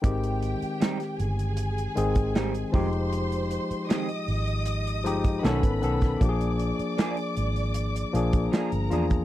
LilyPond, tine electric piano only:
\new Staff \with { instrumentName = "Tine electric piano" } { \time 4/4 \key aes \major \tempo 4 = 78 <ees aes c' g'>4.~ <ees aes c' g'>16 r8. <ees aes c' aes'>4 <f aes ees' g'>8~ | <f aes ees' g'>4~ <f aes ees' g'>16 r4 r16 <f aes ees' g'>8 <dis b cis' a'>8 <dis b cis' a'>8 | <f bes d' g' aes'>4.~ <f bes d' g' aes'>16 r8. <f bes d' aes'>4 <bes d' f' aes'>8 | }